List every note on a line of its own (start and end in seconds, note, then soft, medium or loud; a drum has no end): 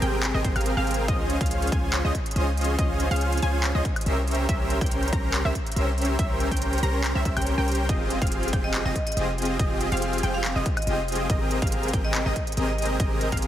0.02 0.32 G#1 loud
0.02 0.32 C4 medium
0.02 0.32 G4 medium
0.02 0.32 G#4 medium
0.02 0.32 A#4 medium
0.02 0.32 G5 medium
0.02 closed hi-hat medium
0.23 clap loud
0.23 closed hi-hat medium
0.34 0.42 G#1 loud
0.34 0.43 C4 medium
0.34 0.42 G4 medium
0.34 0.42 G#4 medium
0.34 0.42 A#4 medium
0.34 0.42 D#5 medium
0.34 0.43 D#5 loud
0.44 0.53 G#1 loud
0.44 0.53 C4 medium
0.44 0.53 G4 medium
0.44 0.53 G#4 medium
0.44 0.53 A#4 medium
0.44 0.53 C5 medium
0.44 kick loud
0.44 closed hi-hat medium
0.56 0.75 G#1 loud
0.56 0.74 C4 medium
0.56 0.74 G4 medium
0.56 0.74 G#4 medium
0.56 0.74 A#4 medium
0.56 0.74 F5 loud
0.56 closed hi-hat soft
0.56 high woodblock medium
0.61 closed hi-hat medium
0.66 closed hi-hat medium
0.77 1.10 G#1 loud
0.77 1.06 C4 medium
0.77 1.06 G4 medium
0.77 1.06 G#4 medium
0.77 1.06 A#4 medium
0.77 1.06 F5 loud
0.87 closed hi-hat soft
0.91 closed hi-hat medium
0.94 closed hi-hat medium
1.08 1.39 C#2 loud
1.08 1.38 F4 medium
1.08 1.38 G#4 medium
1.08 1.38 D#5 loud
1.08 kick loud
1.08 closed hi-hat medium
1.30 closed hi-hat medium
1.41 1.70 C#2 loud
1.41 1.70 F5 medium
1.41 kick loud
1.41 closed hi-hat soft
1.46 closed hi-hat medium
1.51 closed hi-hat medium
1.62 closed hi-hat soft
1.67 closed hi-hat medium
1.72 2.02 C#2 loud
1.72 2.02 F4 medium
1.72 2.02 G#4 medium
1.72 2.02 C5 medium
1.72 2.02 G#5 medium
1.72 kick loud
1.72 closed hi-hat medium
1.94 clap loud
1.94 closed hi-hat medium
2.05 2.11 C#2 loud
2.05 2.13 C#4 medium
2.05 2.13 F4 medium
2.05 2.13 G#4 medium
2.05 2.13 C5 medium
2.05 2.13 D#5 loud
2.05 2.13 D#5 medium
2.15 kick medium
2.15 closed hi-hat medium
2.26 closed hi-hat soft
2.31 closed hi-hat medium
2.36 2.76 C#2 loud
2.36 2.76 C#4 medium
2.36 2.76 F4 medium
2.36 2.76 G#4 medium
2.36 2.76 C5 medium
2.36 2.76 D#5 medium
2.36 closed hi-hat medium
2.57 closed hi-hat soft
2.61 closed hi-hat medium
2.64 closed hi-hat medium
2.79 3.09 C#2 loud
2.79 3.08 C#4 loud
2.79 3.08 G#4 medium
2.79 3.08 D#5 loud
2.79 kick loud
2.79 closed hi-hat medium
3.00 closed hi-hat medium
3.11 3.40 C#2 loud
3.11 3.40 C#4 medium
3.11 3.40 F4 medium
3.11 3.40 G#4 medium
3.11 3.40 C5 medium
3.11 3.40 F5 medium
3.11 closed hi-hat soft
3.16 closed hi-hat medium
3.21 closed hi-hat medium
3.32 closed hi-hat soft
3.37 closed hi-hat medium
3.42 3.73 C#2 loud
3.42 3.72 C#4 medium
3.42 3.72 F4 medium
3.42 3.72 G#4 medium
3.42 3.72 C5 medium
3.42 3.72 G#5 medium
3.42 closed hi-hat medium
3.64 clap loud
3.64 closed hi-hat medium
3.75 3.81 C#2 loud
3.75 3.84 C#4 medium
3.75 3.84 F4 medium
3.75 3.84 G#4 medium
3.75 3.84 C5 medium
3.75 3.83 D#5 medium
3.75 3.84 D#5 loud
3.85 kick loud
3.85 closed hi-hat medium
3.96 closed hi-hat soft
3.96 high woodblock medium
4.01 closed hi-hat medium
4.06 4.47 C2 loud
4.06 4.46 C#4 medium
4.06 4.46 G4 medium
4.06 4.46 A#4 medium
4.06 4.46 C5 medium
4.06 4.46 E5 medium
4.06 closed hi-hat medium
4.28 closed hi-hat soft
4.31 closed hi-hat medium
4.35 closed hi-hat medium
4.49 4.79 C2 loud
4.49 4.79 E5 loud
4.49 kick loud
4.49 closed hi-hat medium
4.70 closed hi-hat medium
4.81 5.11 C2 loud
4.81 5.10 G5 medium
4.81 kick loud
4.81 closed hi-hat soft
4.86 closed hi-hat medium
4.91 closed hi-hat medium
5.03 closed hi-hat soft
5.08 closed hi-hat medium
5.13 5.43 C2 medium
5.13 5.42 C#4 medium
5.13 5.42 G4 medium
5.13 5.42 A#5 medium
5.13 kick loud
5.13 closed hi-hat medium
5.34 clap loud
5.34 closed hi-hat medium
5.45 5.52 C2 loud
5.45 5.54 C#4 medium
5.45 5.54 G4 medium
5.45 5.54 A#4 medium
5.45 5.54 C5 medium
5.45 5.54 E5 medium
5.55 kick medium
5.55 closed hi-hat medium
5.67 closed hi-hat soft
5.72 closed hi-hat medium
5.76 6.17 C2 loud
5.76 6.17 C#4 medium
5.76 6.17 G4 medium
5.76 6.17 A#4 medium
5.76 6.17 C5 medium
5.76 6.17 E5 medium
5.76 closed hi-hat medium
5.98 closed hi-hat soft
6.01 closed hi-hat medium
6.05 closed hi-hat medium
6.19 6.49 C2 loud
6.19 6.49 C#4 loud
6.19 6.49 E5 loud
6.19 kick loud
6.19 closed hi-hat medium
6.40 closed hi-hat medium
6.51 6.81 C2 loud
6.51 6.80 C#4 medium
6.51 6.80 G4 medium
6.51 6.80 A#4 medium
6.51 6.80 C5 medium
6.51 6.80 G5 medium
6.51 kick medium
6.51 closed hi-hat medium
6.57 closed hi-hat medium
6.62 closed hi-hat medium
6.73 closed hi-hat soft
6.78 closed hi-hat medium
6.83 7.13 C2 loud
6.83 7.13 C#4 medium
6.83 7.13 G4 medium
6.83 7.13 A#4 medium
6.83 7.13 C5 medium
6.83 7.13 A#5 medium
6.83 closed hi-hat medium
7.04 clap loud
7.04 closed hi-hat medium
7.15 7.23 C2 loud
7.15 7.23 C#4 medium
7.15 7.23 G4 medium
7.15 7.23 A#4 medium
7.15 7.23 C5 medium
7.15 7.23 E5 loud
7.15 7.23 E5 medium
7.25 7.34 C2 loud
7.25 7.34 C#4 medium
7.25 7.34 G4 medium
7.25 7.34 A#4 medium
7.25 7.34 C5 medium
7.25 7.34 E5 medium
7.25 kick loud
7.25 closed hi-hat medium
7.36 7.56 C2 loud
7.36 7.55 C#4 loud
7.36 7.55 G4 medium
7.36 7.55 A#4 medium
7.36 7.55 C5 medium
7.36 7.55 G5 loud
7.36 closed hi-hat medium
7.36 high woodblock medium
7.42 closed hi-hat medium
7.47 closed hi-hat medium
7.58 7.91 C2 medium
7.58 7.87 C#4 medium
7.58 7.87 G4 medium
7.58 7.87 A#4 medium
7.58 7.87 C5 medium
7.58 7.87 G5 loud
7.68 closed hi-hat medium
7.72 closed hi-hat medium
7.75 closed hi-hat medium
7.89 8.19 F1 medium
7.89 8.19 C4 loud
7.89 8.19 F4 medium
7.89 8.19 G4 medium
7.89 8.19 G#4 medium
7.89 8.19 D#5 loud
7.89 kick loud
7.89 closed hi-hat medium
8.10 closed hi-hat medium
8.22 8.51 F1 loud
8.22 8.51 C4 medium
8.22 8.51 F4 medium
8.22 8.51 G4 medium
8.22 8.51 F5 medium
8.22 kick loud
8.22 closed hi-hat medium
8.27 closed hi-hat medium
8.32 closed hi-hat medium
8.43 closed hi-hat medium
8.48 closed hi-hat medium
8.53 8.83 F1 loud
8.53 8.83 C4 medium
8.53 8.83 G4 medium
8.53 8.83 G#4 medium
8.53 8.83 G5 medium
8.53 kick loud
8.53 closed hi-hat medium
8.64 8.83 D#5 loud
8.74 clap loud
8.74 closed hi-hat medium
8.85 8.92 F1 loud
8.85 8.94 C4 medium
8.85 8.94 F4 medium
8.85 8.94 G4 medium
8.85 8.94 G#4 medium
8.85 9.01 D#5 medium
8.85 8.94 D#5 loud
8.85 8.94 D#5 medium
8.96 kick medium
8.96 closed hi-hat medium
9.07 9.22 D#5 loud
9.07 closed hi-hat medium
9.12 closed hi-hat medium
9.17 9.57 F1 medium
9.17 9.57 C4 medium
9.17 9.57 F4 medium
9.17 9.57 G4 medium
9.17 9.57 G#4 medium
9.17 9.57 D#5 medium
9.17 closed hi-hat medium
9.38 closed hi-hat medium
9.42 closed hi-hat medium
9.45 closed hi-hat medium
9.59 9.90 F1 loud
9.59 9.89 G#4 medium
9.59 9.89 D#5 loud
9.59 kick loud
9.59 closed hi-hat medium
9.81 closed hi-hat medium
9.92 10.21 F1 loud
9.92 10.21 C4 medium
9.92 10.21 F4 medium
9.92 10.21 G4 medium
9.92 10.21 G#4 medium
9.92 10.21 F5 medium
9.92 closed hi-hat medium
9.97 closed hi-hat medium
10.02 closed hi-hat medium
10.13 closed hi-hat medium
10.18 closed hi-hat medium
10.23 10.53 F1 loud
10.23 10.53 C4 medium
10.23 10.53 F4 medium
10.23 10.53 G4 medium
10.23 10.53 G#4 medium
10.23 10.53 G5 medium
10.23 closed hi-hat medium
10.34 10.50 F5 medium
10.44 clap loud
10.44 closed hi-hat medium
10.56 10.62 F1 loud
10.56 10.64 C4 medium
10.56 10.64 F4 medium
10.56 10.64 G4 medium
10.56 10.64 G#4 medium
10.56 10.64 D#5 loud
10.56 10.64 D#5 medium
10.66 kick loud
10.66 closed hi-hat medium
10.77 10.83 D#5 medium
10.77 closed hi-hat medium
10.77 high woodblock medium
10.82 closed hi-hat medium
10.87 11.28 F1 medium
10.87 11.27 C4 medium
10.87 11.27 F4 medium
10.87 11.27 G4 medium
10.87 11.27 G#4 medium
10.87 10.94 D#5 medium
10.87 11.27 D#5 medium
10.87 closed hi-hat medium
11.08 closed hi-hat medium
11.12 closed hi-hat medium
11.15 closed hi-hat medium
11.30 11.60 G#1 loud
11.30 11.59 C4 loud
11.30 11.59 G#4 medium
11.30 11.59 A#4 medium
11.30 11.59 D#5 loud
11.30 kick loud
11.30 closed hi-hat medium
11.51 closed hi-hat medium
11.62 11.91 G#1 loud
11.62 11.91 C4 medium
11.62 11.91 G#4 medium
11.62 11.91 F5 medium
11.62 kick loud
11.62 closed hi-hat medium
11.67 closed hi-hat medium
11.72 closed hi-hat medium
11.83 closed hi-hat medium
11.88 closed hi-hat medium
11.93 12.24 G#1 loud
11.93 12.23 C4 medium
11.93 12.23 G4 medium
11.93 12.23 G#4 medium
11.93 12.23 A#4 medium
11.93 12.23 G5 medium
11.93 kick loud
11.93 closed hi-hat medium
12.05 12.24 D#5 loud
12.15 clap loud
12.15 closed hi-hat medium
12.26 12.32 G#1 loud
12.26 12.35 C4 medium
12.26 12.35 G4 medium
12.26 12.35 G#4 medium
12.26 12.35 A#4 medium
12.26 12.42 D#5 loud
12.26 12.35 D#5 medium
12.26 12.35 D#5 loud
12.36 kick medium
12.36 closed hi-hat medium
12.47 closed hi-hat medium
12.52 closed hi-hat medium
12.57 12.98 G#1 loud
12.57 12.97 C4 medium
12.57 12.97 G4 medium
12.57 12.97 G#4 medium
12.57 12.97 A#4 medium
12.57 12.97 D#5 medium
12.57 closed hi-hat medium
12.68 12.84 D#5 medium
12.78 closed hi-hat soft
12.82 closed hi-hat medium
12.86 closed hi-hat medium
13.00 13.30 G#1 loud
13.00 13.30 C4 loud
13.00 13.30 G4 medium
13.00 13.30 G#4 medium
13.00 13.30 A#4 medium
13.00 13.30 D#5 loud
13.00 kick loud
13.00 closed hi-hat medium
13.21 closed hi-hat medium
13.32 13.47 G#1 loud
13.32 13.47 C4 medium
13.32 13.47 G4 medium
13.32 13.47 G#4 medium
13.32 13.47 A#4 medium
13.32 13.47 F5 medium
13.32 kick medium
13.32 closed hi-hat medium
13.37 closed hi-hat medium
13.42 closed hi-hat medium